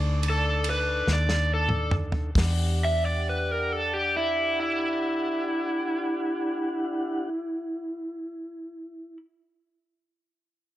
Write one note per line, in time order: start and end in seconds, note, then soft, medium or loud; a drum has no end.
0.00 1.02 D2 medium
0.00 2.31 D4 medium
0.00 2.30 D#4 medium
0.00 2.21 A4 medium
0.00 2.31 A4 medium
0.00 2.21 D5 medium
0.23 ride medium
0.30 0.66 A4 medium
0.64 ride medium
0.70 1.07 B4 medium
1.07 2.32 D#2 medium
1.07 snare soft
1.13 1.50 D5 medium
1.29 snare medium
1.54 1.93 A4 medium
1.69 mid tom medium
1.91 mid tom medium
2.12 floor tom medium
2.35 7.30 E2 medium
2.35 7.30 D4 medium
2.35 7.29 G4 medium
2.35 7.32 G4 medium
2.35 7.32 D5 medium
2.35 7.30 F#5 medium
2.35 kick loud
2.35 snare loud
2.35 open hi-hat medium
2.85 3.04 E5 medium
3.05 3.25 D5 medium
3.29 3.51 B4 medium
3.51 3.72 A#4 medium
3.72 3.94 A4 medium
3.94 4.14 G4 medium
4.16 4.58 E4 medium
4.60 9.17 E4 medium